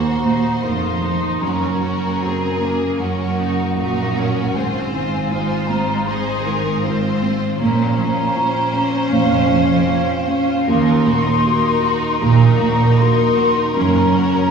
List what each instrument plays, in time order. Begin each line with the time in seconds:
Already playing: cello section D#2, double bass section D#2, felt piano D#2 A#2 D#4 F#4 A#4, viola section A#3, violin section F#4 C5, flute section A#5
0.23 felt piano A#2, viola section D#4
0.63 double bass section F1, cello section F2, felt piano D#4 A#4, violin section F4, flute section C6
1.02 felt piano D#4, violin section D#4
1.41 double bass section F#1, felt piano F#2, cello section F#2, viola section C#4, violin section F#4 A#4, flute section A#5
1.82 felt piano C#3, violin section F#4
2.21 viola section C4, felt piano F#4 A#4, violin section G#4
2.60 viola section A#3, felt piano C#4
2.99 felt piano F#2, viola section C#4, violin section F#4 A#4, flute section F#5
3.38 felt piano C#3, viola section D#4
3.77 double bass section A#1, cello section A#2, viola section D#4, violin section F#4 A#4, felt piano F#4 A#4
4.17 viola section C#4, felt piano C#4, flute section F#5
4.55 double bass section G#1, cello section G#2, felt piano G#2, viola section C4, violin section F4 C5, flute section G#5
4.94 felt piano D#3, violin section F4
5.30 violin section D#4 C5, felt piano F4 C5, viola section F4
5.67 felt piano C4, violin section D#4, flute section A#5
6.06 felt piano G#2, viola section D#4, violin section G#4 C5, flute section C6
6.45 felt piano D#3, violin section A#4
6.82 viola section C4, violin section F4 C5, felt piano F4 C5
7.22 felt piano C4
7.58 double bass section A#1, cello section A#2, felt piano A#2, violin section A#3 C5, viola section C#4, flute section A#5
7.78 violin section C4
7.97 felt piano F3, violin section C#4
8.16 violin section F4
8.35 violin section C#4, felt piano F4 C5
8.54 violin section C4
8.73 violin section A#3, felt piano C#4
8.91 violin section C4
9.10 double bass section F1, cello section F2, felt piano A#2, violin section C#4, flute section F5
9.28 violin section F4
9.48 felt piano F3, violin section C#4
9.66 violin section C4
9.87 violin section A#3, felt piano F4 C5
10.07 violin section C4
10.27 violin section C#4, felt piano C#4, flute section F5
10.49 violin section F4
10.67 felt piano D#2, double bass section D#2, cello section D#2, violin section A#3 A#4, viola section D#4, flute section C6
10.88 violin section D#4
11.06 felt piano A#2, violin section F#4
11.26 violin section D#4
11.45 violin section A#3, felt piano F#4 A#4
11.63 violin section D#4
11.83 felt piano D#4, violin section F#4
12.00 violin section D#4
12.20 double bass section A#1, felt piano D#2, cello section A#2, violin section A#3, flute section A#5
12.39 violin section D#4
12.57 felt piano A#2, violin section F#4
12.77 violin section D#4
12.96 violin section A#3, felt piano F#4 A#4, flute section C6
13.16 violin section D#4
13.36 felt piano D#4, violin section F#4
13.55 violin section D#4
13.75 double bass section F#1, cello section F#2, felt piano F#2, violin section A#3, viola section C#4, flute section A#5
13.95 violin section C#4
14.15 felt piano C#3, violin section F#4
14.35 violin section C#4